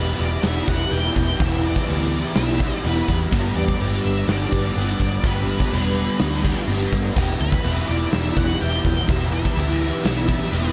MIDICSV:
0, 0, Header, 1, 5, 480
1, 0, Start_track
1, 0, Tempo, 480384
1, 1405, Time_signature, 4, 2, 24, 8
1, 10715, End_track
2, 0, Start_track
2, 0, Title_t, "Lead electric guitar"
2, 0, Program_c, 0, 29
2, 0, Note_on_c, 0, 71, 88
2, 208, Note_off_c, 0, 71, 0
2, 212, Note_on_c, 0, 74, 99
2, 431, Note_on_c, 0, 76, 88
2, 454, Note_off_c, 0, 74, 0
2, 674, Note_off_c, 0, 76, 0
2, 678, Note_on_c, 0, 78, 79
2, 920, Note_off_c, 0, 78, 0
2, 924, Note_on_c, 0, 79, 87
2, 1419, Note_off_c, 0, 79, 0
2, 1428, Note_on_c, 0, 76, 93
2, 1639, Note_off_c, 0, 76, 0
2, 1643, Note_on_c, 0, 74, 91
2, 2349, Note_off_c, 0, 74, 0
2, 2353, Note_on_c, 0, 76, 83
2, 2844, Note_on_c, 0, 71, 66
2, 2856, Note_off_c, 0, 76, 0
2, 3181, Note_off_c, 0, 71, 0
2, 3552, Note_on_c, 0, 74, 91
2, 4033, Note_off_c, 0, 74, 0
2, 4037, Note_on_c, 0, 76, 91
2, 4270, Note_off_c, 0, 76, 0
2, 4274, Note_on_c, 0, 74, 99
2, 5003, Note_off_c, 0, 74, 0
2, 5015, Note_on_c, 0, 74, 104
2, 5238, Note_on_c, 0, 71, 67
2, 5258, Note_off_c, 0, 74, 0
2, 6641, Note_off_c, 0, 71, 0
2, 7402, Note_on_c, 0, 71, 80
2, 7871, Note_on_c, 0, 74, 96
2, 7897, Note_off_c, 0, 71, 0
2, 8108, Note_off_c, 0, 74, 0
2, 8112, Note_on_c, 0, 76, 86
2, 8365, Note_off_c, 0, 76, 0
2, 8368, Note_on_c, 0, 78, 90
2, 8603, Note_off_c, 0, 78, 0
2, 8607, Note_on_c, 0, 79, 98
2, 9081, Note_on_c, 0, 76, 99
2, 9098, Note_off_c, 0, 79, 0
2, 9321, Note_off_c, 0, 76, 0
2, 9333, Note_on_c, 0, 76, 89
2, 10029, Note_off_c, 0, 76, 0
2, 10041, Note_on_c, 0, 76, 81
2, 10533, Note_off_c, 0, 76, 0
2, 10538, Note_on_c, 0, 71, 67
2, 10715, Note_off_c, 0, 71, 0
2, 10715, End_track
3, 0, Start_track
3, 0, Title_t, "Overdriven electric guitar"
3, 0, Program_c, 1, 29
3, 0, Note_on_c, 1, 52, 70
3, 0, Note_on_c, 1, 59, 78
3, 0, Note_on_c, 1, 64, 72
3, 0, Note_on_c, 1, 67, 82
3, 408, Note_off_c, 1, 52, 0
3, 420, Note_on_c, 1, 52, 82
3, 430, Note_off_c, 1, 59, 0
3, 433, Note_off_c, 1, 64, 0
3, 434, Note_on_c, 1, 59, 98
3, 442, Note_off_c, 1, 67, 0
3, 445, Note_on_c, 1, 64, 99
3, 446, Note_on_c, 1, 67, 107
3, 668, Note_off_c, 1, 64, 0
3, 669, Note_off_c, 1, 67, 0
3, 673, Note_on_c, 1, 67, 68
3, 680, Note_on_c, 1, 64, 61
3, 691, Note_off_c, 1, 59, 0
3, 695, Note_on_c, 1, 59, 56
3, 902, Note_off_c, 1, 52, 0
3, 914, Note_on_c, 1, 52, 81
3, 918, Note_off_c, 1, 59, 0
3, 921, Note_off_c, 1, 64, 0
3, 922, Note_on_c, 1, 59, 78
3, 933, Note_off_c, 1, 67, 0
3, 933, Note_on_c, 1, 64, 77
3, 937, Note_on_c, 1, 67, 88
3, 1382, Note_off_c, 1, 52, 0
3, 1394, Note_on_c, 1, 52, 92
3, 1399, Note_off_c, 1, 59, 0
3, 1403, Note_off_c, 1, 64, 0
3, 1403, Note_on_c, 1, 59, 94
3, 1415, Note_on_c, 1, 64, 93
3, 1420, Note_off_c, 1, 67, 0
3, 1424, Note_on_c, 1, 67, 87
3, 1866, Note_off_c, 1, 52, 0
3, 1878, Note_on_c, 1, 52, 66
3, 1887, Note_off_c, 1, 59, 0
3, 1887, Note_off_c, 1, 64, 0
3, 1891, Note_on_c, 1, 59, 72
3, 1899, Note_on_c, 1, 64, 76
3, 1900, Note_off_c, 1, 67, 0
3, 1904, Note_on_c, 1, 67, 76
3, 2349, Note_off_c, 1, 52, 0
3, 2361, Note_off_c, 1, 64, 0
3, 2361, Note_on_c, 1, 52, 86
3, 2367, Note_off_c, 1, 59, 0
3, 2371, Note_on_c, 1, 59, 88
3, 2373, Note_on_c, 1, 64, 95
3, 2382, Note_off_c, 1, 67, 0
3, 2386, Note_on_c, 1, 67, 104
3, 2600, Note_off_c, 1, 67, 0
3, 2602, Note_off_c, 1, 64, 0
3, 2604, Note_on_c, 1, 67, 64
3, 2614, Note_on_c, 1, 64, 56
3, 2622, Note_off_c, 1, 59, 0
3, 2626, Note_on_c, 1, 59, 49
3, 2829, Note_off_c, 1, 52, 0
3, 2841, Note_on_c, 1, 52, 72
3, 2847, Note_off_c, 1, 64, 0
3, 2850, Note_off_c, 1, 59, 0
3, 2854, Note_on_c, 1, 59, 82
3, 2859, Note_off_c, 1, 67, 0
3, 2859, Note_on_c, 1, 64, 75
3, 2863, Note_on_c, 1, 67, 79
3, 3303, Note_off_c, 1, 52, 0
3, 3307, Note_on_c, 1, 55, 92
3, 3313, Note_off_c, 1, 59, 0
3, 3317, Note_on_c, 1, 59, 92
3, 3320, Note_off_c, 1, 64, 0
3, 3326, Note_off_c, 1, 67, 0
3, 3326, Note_on_c, 1, 62, 85
3, 3330, Note_on_c, 1, 67, 94
3, 3783, Note_off_c, 1, 55, 0
3, 3787, Note_on_c, 1, 55, 72
3, 3800, Note_off_c, 1, 59, 0
3, 3802, Note_off_c, 1, 62, 0
3, 3804, Note_on_c, 1, 59, 70
3, 3806, Note_on_c, 1, 62, 73
3, 3811, Note_off_c, 1, 67, 0
3, 3815, Note_on_c, 1, 67, 76
3, 4265, Note_off_c, 1, 55, 0
3, 4269, Note_on_c, 1, 55, 88
3, 4274, Note_off_c, 1, 59, 0
3, 4277, Note_off_c, 1, 62, 0
3, 4278, Note_on_c, 1, 59, 82
3, 4289, Note_on_c, 1, 62, 94
3, 4291, Note_off_c, 1, 67, 0
3, 4295, Note_on_c, 1, 67, 105
3, 4508, Note_off_c, 1, 67, 0
3, 4512, Note_on_c, 1, 67, 69
3, 4514, Note_off_c, 1, 62, 0
3, 4526, Note_on_c, 1, 62, 61
3, 4531, Note_off_c, 1, 59, 0
3, 4535, Note_on_c, 1, 59, 58
3, 4746, Note_off_c, 1, 55, 0
3, 4750, Note_on_c, 1, 55, 72
3, 4752, Note_off_c, 1, 59, 0
3, 4753, Note_off_c, 1, 62, 0
3, 4756, Note_on_c, 1, 59, 80
3, 4765, Note_on_c, 1, 62, 84
3, 4769, Note_off_c, 1, 67, 0
3, 4773, Note_on_c, 1, 67, 74
3, 5228, Note_off_c, 1, 55, 0
3, 5232, Note_on_c, 1, 55, 87
3, 5234, Note_off_c, 1, 62, 0
3, 5237, Note_off_c, 1, 59, 0
3, 5241, Note_on_c, 1, 59, 90
3, 5246, Note_on_c, 1, 62, 96
3, 5255, Note_off_c, 1, 67, 0
3, 5259, Note_on_c, 1, 67, 107
3, 5715, Note_off_c, 1, 55, 0
3, 5719, Note_on_c, 1, 55, 73
3, 5722, Note_off_c, 1, 62, 0
3, 5724, Note_off_c, 1, 59, 0
3, 5728, Note_on_c, 1, 59, 71
3, 5734, Note_on_c, 1, 62, 79
3, 5736, Note_off_c, 1, 67, 0
3, 5740, Note_on_c, 1, 67, 75
3, 6186, Note_off_c, 1, 55, 0
3, 6190, Note_off_c, 1, 59, 0
3, 6190, Note_on_c, 1, 55, 94
3, 6194, Note_on_c, 1, 59, 91
3, 6199, Note_off_c, 1, 62, 0
3, 6211, Note_on_c, 1, 62, 96
3, 6212, Note_off_c, 1, 67, 0
3, 6216, Note_on_c, 1, 67, 93
3, 6420, Note_off_c, 1, 67, 0
3, 6421, Note_off_c, 1, 62, 0
3, 6424, Note_on_c, 1, 67, 68
3, 6433, Note_on_c, 1, 62, 64
3, 6444, Note_off_c, 1, 59, 0
3, 6448, Note_on_c, 1, 59, 55
3, 6667, Note_off_c, 1, 55, 0
3, 6671, Note_on_c, 1, 55, 74
3, 6679, Note_off_c, 1, 59, 0
3, 6680, Note_off_c, 1, 62, 0
3, 6683, Note_on_c, 1, 59, 79
3, 6692, Note_on_c, 1, 62, 90
3, 6700, Note_off_c, 1, 67, 0
3, 6704, Note_on_c, 1, 67, 79
3, 7139, Note_off_c, 1, 55, 0
3, 7143, Note_on_c, 1, 52, 84
3, 7151, Note_off_c, 1, 59, 0
3, 7154, Note_off_c, 1, 62, 0
3, 7155, Note_on_c, 1, 59, 92
3, 7162, Note_on_c, 1, 64, 88
3, 7164, Note_off_c, 1, 67, 0
3, 7168, Note_on_c, 1, 67, 107
3, 7619, Note_off_c, 1, 52, 0
3, 7623, Note_on_c, 1, 52, 71
3, 7626, Note_off_c, 1, 59, 0
3, 7630, Note_on_c, 1, 59, 69
3, 7633, Note_off_c, 1, 64, 0
3, 7637, Note_on_c, 1, 64, 75
3, 7645, Note_off_c, 1, 67, 0
3, 7649, Note_on_c, 1, 67, 92
3, 8105, Note_off_c, 1, 52, 0
3, 8108, Note_off_c, 1, 59, 0
3, 8109, Note_on_c, 1, 52, 93
3, 8120, Note_on_c, 1, 59, 100
3, 8126, Note_off_c, 1, 64, 0
3, 8130, Note_on_c, 1, 64, 98
3, 8131, Note_off_c, 1, 67, 0
3, 8135, Note_on_c, 1, 67, 95
3, 8350, Note_off_c, 1, 67, 0
3, 8354, Note_on_c, 1, 67, 67
3, 8361, Note_off_c, 1, 64, 0
3, 8365, Note_on_c, 1, 64, 60
3, 8367, Note_off_c, 1, 59, 0
3, 8379, Note_on_c, 1, 59, 46
3, 8580, Note_off_c, 1, 52, 0
3, 8581, Note_off_c, 1, 59, 0
3, 8584, Note_on_c, 1, 52, 79
3, 8593, Note_on_c, 1, 59, 82
3, 8597, Note_off_c, 1, 64, 0
3, 8601, Note_on_c, 1, 64, 75
3, 8602, Note_off_c, 1, 67, 0
3, 8606, Note_on_c, 1, 67, 80
3, 9052, Note_off_c, 1, 52, 0
3, 9059, Note_off_c, 1, 59, 0
3, 9064, Note_on_c, 1, 52, 94
3, 9071, Note_on_c, 1, 59, 91
3, 9074, Note_off_c, 1, 64, 0
3, 9076, Note_off_c, 1, 67, 0
3, 9086, Note_on_c, 1, 64, 89
3, 9088, Note_on_c, 1, 67, 94
3, 9533, Note_off_c, 1, 52, 0
3, 9545, Note_on_c, 1, 52, 73
3, 9546, Note_off_c, 1, 59, 0
3, 9547, Note_off_c, 1, 64, 0
3, 9556, Note_off_c, 1, 67, 0
3, 9558, Note_on_c, 1, 59, 82
3, 9559, Note_on_c, 1, 64, 80
3, 9568, Note_on_c, 1, 67, 77
3, 10010, Note_off_c, 1, 52, 0
3, 10015, Note_off_c, 1, 59, 0
3, 10022, Note_on_c, 1, 52, 86
3, 10027, Note_off_c, 1, 64, 0
3, 10027, Note_on_c, 1, 59, 94
3, 10034, Note_off_c, 1, 67, 0
3, 10039, Note_on_c, 1, 64, 93
3, 10046, Note_on_c, 1, 67, 104
3, 10251, Note_off_c, 1, 67, 0
3, 10262, Note_off_c, 1, 64, 0
3, 10263, Note_on_c, 1, 67, 60
3, 10274, Note_on_c, 1, 64, 62
3, 10275, Note_off_c, 1, 59, 0
3, 10287, Note_on_c, 1, 59, 52
3, 10480, Note_off_c, 1, 52, 0
3, 10490, Note_off_c, 1, 59, 0
3, 10492, Note_on_c, 1, 52, 72
3, 10497, Note_off_c, 1, 64, 0
3, 10502, Note_on_c, 1, 59, 70
3, 10505, Note_off_c, 1, 67, 0
3, 10509, Note_on_c, 1, 64, 73
3, 10517, Note_on_c, 1, 67, 83
3, 10715, Note_off_c, 1, 52, 0
3, 10715, Note_off_c, 1, 59, 0
3, 10715, Note_off_c, 1, 64, 0
3, 10715, Note_off_c, 1, 67, 0
3, 10715, End_track
4, 0, Start_track
4, 0, Title_t, "Picked electric bass"
4, 0, Program_c, 2, 34
4, 0, Note_on_c, 2, 28, 85
4, 124, Note_off_c, 2, 28, 0
4, 197, Note_on_c, 2, 28, 97
4, 366, Note_off_c, 2, 28, 0
4, 430, Note_on_c, 2, 28, 86
4, 602, Note_off_c, 2, 28, 0
4, 680, Note_on_c, 2, 28, 83
4, 849, Note_off_c, 2, 28, 0
4, 912, Note_on_c, 2, 28, 81
4, 1083, Note_off_c, 2, 28, 0
4, 1157, Note_on_c, 2, 28, 90
4, 1327, Note_off_c, 2, 28, 0
4, 1398, Note_on_c, 2, 28, 84
4, 1736, Note_off_c, 2, 28, 0
4, 1887, Note_on_c, 2, 38, 77
4, 2222, Note_off_c, 2, 38, 0
4, 2359, Note_on_c, 2, 35, 83
4, 2697, Note_off_c, 2, 35, 0
4, 2844, Note_on_c, 2, 28, 89
4, 3012, Note_off_c, 2, 28, 0
4, 3081, Note_on_c, 2, 40, 86
4, 3251, Note_off_c, 2, 40, 0
4, 3320, Note_on_c, 2, 31, 82
4, 3490, Note_off_c, 2, 31, 0
4, 3560, Note_on_c, 2, 40, 79
4, 3730, Note_off_c, 2, 40, 0
4, 3806, Note_on_c, 2, 31, 77
4, 3974, Note_off_c, 2, 31, 0
4, 4049, Note_on_c, 2, 31, 90
4, 4216, Note_off_c, 2, 31, 0
4, 4272, Note_on_c, 2, 31, 82
4, 4445, Note_off_c, 2, 31, 0
4, 4524, Note_on_c, 2, 31, 76
4, 4693, Note_off_c, 2, 31, 0
4, 4760, Note_on_c, 2, 31, 82
4, 4930, Note_off_c, 2, 31, 0
4, 4999, Note_on_c, 2, 31, 91
4, 5169, Note_off_c, 2, 31, 0
4, 5230, Note_on_c, 2, 31, 84
4, 5570, Note_off_c, 2, 31, 0
4, 5722, Note_on_c, 2, 28, 74
4, 6058, Note_off_c, 2, 28, 0
4, 6199, Note_on_c, 2, 38, 84
4, 6536, Note_off_c, 2, 38, 0
4, 6671, Note_on_c, 2, 31, 81
4, 6843, Note_off_c, 2, 31, 0
4, 6919, Note_on_c, 2, 43, 87
4, 7088, Note_off_c, 2, 43, 0
4, 7156, Note_on_c, 2, 28, 85
4, 7326, Note_off_c, 2, 28, 0
4, 7402, Note_on_c, 2, 38, 83
4, 7570, Note_off_c, 2, 38, 0
4, 7641, Note_on_c, 2, 28, 90
4, 7809, Note_off_c, 2, 28, 0
4, 7884, Note_on_c, 2, 28, 94
4, 8051, Note_off_c, 2, 28, 0
4, 8129, Note_on_c, 2, 28, 85
4, 8294, Note_off_c, 2, 28, 0
4, 8360, Note_on_c, 2, 28, 77
4, 8528, Note_off_c, 2, 28, 0
4, 8611, Note_on_c, 2, 28, 89
4, 8775, Note_off_c, 2, 28, 0
4, 8842, Note_on_c, 2, 28, 91
4, 9009, Note_off_c, 2, 28, 0
4, 9086, Note_on_c, 2, 28, 90
4, 9418, Note_off_c, 2, 28, 0
4, 9563, Note_on_c, 2, 38, 78
4, 9895, Note_off_c, 2, 38, 0
4, 10043, Note_on_c, 2, 35, 84
4, 10375, Note_off_c, 2, 35, 0
4, 10516, Note_on_c, 2, 28, 78
4, 10683, Note_off_c, 2, 28, 0
4, 10715, End_track
5, 0, Start_track
5, 0, Title_t, "Drums"
5, 204, Note_on_c, 9, 46, 48
5, 303, Note_off_c, 9, 46, 0
5, 432, Note_on_c, 9, 46, 71
5, 434, Note_on_c, 9, 38, 98
5, 532, Note_off_c, 9, 46, 0
5, 534, Note_off_c, 9, 38, 0
5, 672, Note_on_c, 9, 46, 56
5, 679, Note_on_c, 9, 36, 78
5, 772, Note_off_c, 9, 46, 0
5, 779, Note_off_c, 9, 36, 0
5, 911, Note_on_c, 9, 46, 80
5, 1011, Note_off_c, 9, 46, 0
5, 1045, Note_on_c, 9, 38, 29
5, 1145, Note_off_c, 9, 38, 0
5, 1150, Note_on_c, 9, 46, 58
5, 1160, Note_on_c, 9, 36, 72
5, 1250, Note_off_c, 9, 46, 0
5, 1260, Note_off_c, 9, 36, 0
5, 1386, Note_on_c, 9, 46, 76
5, 1400, Note_on_c, 9, 36, 109
5, 1486, Note_off_c, 9, 46, 0
5, 1500, Note_off_c, 9, 36, 0
5, 1635, Note_on_c, 9, 46, 58
5, 1735, Note_off_c, 9, 46, 0
5, 1759, Note_on_c, 9, 36, 75
5, 1859, Note_off_c, 9, 36, 0
5, 1867, Note_on_c, 9, 46, 74
5, 1967, Note_off_c, 9, 46, 0
5, 2119, Note_on_c, 9, 46, 48
5, 2219, Note_off_c, 9, 46, 0
5, 2353, Note_on_c, 9, 46, 65
5, 2355, Note_on_c, 9, 38, 111
5, 2453, Note_off_c, 9, 46, 0
5, 2455, Note_off_c, 9, 38, 0
5, 2589, Note_on_c, 9, 46, 51
5, 2600, Note_on_c, 9, 36, 69
5, 2689, Note_off_c, 9, 46, 0
5, 2699, Note_off_c, 9, 36, 0
5, 2836, Note_on_c, 9, 46, 75
5, 2936, Note_off_c, 9, 46, 0
5, 3081, Note_on_c, 9, 46, 46
5, 3082, Note_on_c, 9, 36, 63
5, 3180, Note_off_c, 9, 46, 0
5, 3182, Note_off_c, 9, 36, 0
5, 3321, Note_on_c, 9, 46, 69
5, 3323, Note_on_c, 9, 36, 102
5, 3421, Note_off_c, 9, 46, 0
5, 3422, Note_off_c, 9, 36, 0
5, 3558, Note_on_c, 9, 46, 49
5, 3658, Note_off_c, 9, 46, 0
5, 3681, Note_on_c, 9, 36, 78
5, 3781, Note_off_c, 9, 36, 0
5, 3802, Note_on_c, 9, 46, 65
5, 3901, Note_off_c, 9, 46, 0
5, 4042, Note_on_c, 9, 46, 52
5, 4141, Note_off_c, 9, 46, 0
5, 4284, Note_on_c, 9, 46, 67
5, 4286, Note_on_c, 9, 38, 100
5, 4384, Note_off_c, 9, 46, 0
5, 4386, Note_off_c, 9, 38, 0
5, 4522, Note_on_c, 9, 36, 73
5, 4523, Note_on_c, 9, 46, 50
5, 4622, Note_off_c, 9, 36, 0
5, 4623, Note_off_c, 9, 46, 0
5, 4756, Note_on_c, 9, 46, 80
5, 4856, Note_off_c, 9, 46, 0
5, 4991, Note_on_c, 9, 46, 55
5, 4996, Note_on_c, 9, 36, 66
5, 5091, Note_off_c, 9, 46, 0
5, 5096, Note_off_c, 9, 36, 0
5, 5223, Note_on_c, 9, 46, 70
5, 5233, Note_on_c, 9, 36, 102
5, 5323, Note_off_c, 9, 46, 0
5, 5333, Note_off_c, 9, 36, 0
5, 5458, Note_on_c, 9, 46, 57
5, 5558, Note_off_c, 9, 46, 0
5, 5596, Note_on_c, 9, 36, 80
5, 5696, Note_off_c, 9, 36, 0
5, 5705, Note_on_c, 9, 46, 75
5, 5805, Note_off_c, 9, 46, 0
5, 5950, Note_on_c, 9, 46, 54
5, 6049, Note_off_c, 9, 46, 0
5, 6190, Note_on_c, 9, 46, 70
5, 6192, Note_on_c, 9, 38, 109
5, 6290, Note_off_c, 9, 46, 0
5, 6292, Note_off_c, 9, 38, 0
5, 6440, Note_on_c, 9, 36, 72
5, 6445, Note_on_c, 9, 46, 51
5, 6540, Note_off_c, 9, 36, 0
5, 6544, Note_off_c, 9, 46, 0
5, 6690, Note_on_c, 9, 46, 70
5, 6790, Note_off_c, 9, 46, 0
5, 6919, Note_on_c, 9, 36, 69
5, 6919, Note_on_c, 9, 46, 51
5, 7019, Note_off_c, 9, 36, 0
5, 7019, Note_off_c, 9, 46, 0
5, 7159, Note_on_c, 9, 36, 106
5, 7164, Note_on_c, 9, 46, 66
5, 7259, Note_off_c, 9, 36, 0
5, 7264, Note_off_c, 9, 46, 0
5, 7398, Note_on_c, 9, 46, 54
5, 7498, Note_off_c, 9, 46, 0
5, 7517, Note_on_c, 9, 36, 84
5, 7617, Note_off_c, 9, 36, 0
5, 7635, Note_on_c, 9, 46, 65
5, 7735, Note_off_c, 9, 46, 0
5, 7882, Note_on_c, 9, 46, 49
5, 7982, Note_off_c, 9, 46, 0
5, 8121, Note_on_c, 9, 46, 69
5, 8123, Note_on_c, 9, 38, 108
5, 8221, Note_off_c, 9, 46, 0
5, 8223, Note_off_c, 9, 38, 0
5, 8361, Note_on_c, 9, 36, 79
5, 8369, Note_on_c, 9, 46, 47
5, 8461, Note_off_c, 9, 36, 0
5, 8469, Note_off_c, 9, 46, 0
5, 8608, Note_on_c, 9, 46, 75
5, 8708, Note_off_c, 9, 46, 0
5, 8841, Note_on_c, 9, 36, 72
5, 8849, Note_on_c, 9, 46, 53
5, 8941, Note_off_c, 9, 36, 0
5, 8948, Note_off_c, 9, 46, 0
5, 9081, Note_on_c, 9, 36, 100
5, 9085, Note_on_c, 9, 46, 74
5, 9181, Note_off_c, 9, 36, 0
5, 9185, Note_off_c, 9, 46, 0
5, 9333, Note_on_c, 9, 46, 54
5, 9433, Note_off_c, 9, 46, 0
5, 9444, Note_on_c, 9, 36, 77
5, 9544, Note_off_c, 9, 36, 0
5, 9572, Note_on_c, 9, 46, 73
5, 9672, Note_off_c, 9, 46, 0
5, 9813, Note_on_c, 9, 46, 53
5, 9913, Note_off_c, 9, 46, 0
5, 10046, Note_on_c, 9, 46, 75
5, 10048, Note_on_c, 9, 38, 106
5, 10146, Note_off_c, 9, 46, 0
5, 10148, Note_off_c, 9, 38, 0
5, 10278, Note_on_c, 9, 36, 75
5, 10286, Note_on_c, 9, 46, 52
5, 10378, Note_off_c, 9, 36, 0
5, 10386, Note_off_c, 9, 46, 0
5, 10524, Note_on_c, 9, 46, 74
5, 10624, Note_off_c, 9, 46, 0
5, 10715, End_track
0, 0, End_of_file